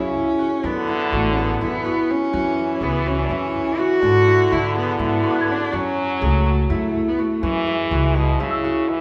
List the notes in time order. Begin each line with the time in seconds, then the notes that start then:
Already playing: F#2 C#3 C#4 E4 F#4 G#4
0.39 F#4
0.62 F#2 D3 B3 D4
0.88 E4 B5
1.12 A1 A3 F#4
1.31 C#4
1.37 B3 G#4
1.61 F#2 B3 E4
1.85 F#4
2.11 C#4
2.33 F#2 E3 F#4
2.81 C#2 B3 G#4
3.06 C#4 F#4
3.24 D4
3.29 F#2 C#4 E4
3.78 F#4
4.02 G#2 D3 D4
4.27 E4
4.51 D3 E4 F#4
4.75 B3 G#4
4.99 G#2 B3 E4
5.23 F#4
5.31 D6
5.35 F#6
5.41 G#6
5.51 D4
5.72 F#2 F#3 C#4 F#4
6.21 C#2 A3 G#4
6.46 F#4
6.70 F#2 A3 E4
7.08 B3
7.19 A3 F#4
7.43 F#2 E3 G#3 C#4
7.67 E4
7.91 C#2 F#4
8.15 B2 G#4
8.40 F#2 C#3 E4
8.51 E6
8.64 F#4
8.90 E3